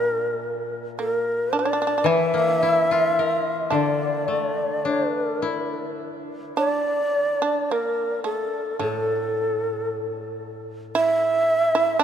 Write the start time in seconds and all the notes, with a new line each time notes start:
Already playing: A#2 A#3 A#4
0.12 A3
0.99 A#3 A4
1.10 A#4
1.53 D4 D5
1.59 D4
1.65 D4
1.73 D4
1.82 D4
1.87 D4
1.98 D4
2.04 E3 E4 E5
2.34 A#3
2.63 E4
2.91 F4
3.19 A#4
3.70 D3 D4 D5
4.28 A3
4.83 D4 C#5
4.98 C5
5.12 B4
5.26 A#4
5.42 E4
6.57 D4 D5
7.13 A#3
7.42 D4
7.71 A#3 A#4
8.24 A3 A4
8.79 A2 A3 A4
10.95 E4 E5
11.75 E4
11.99 D4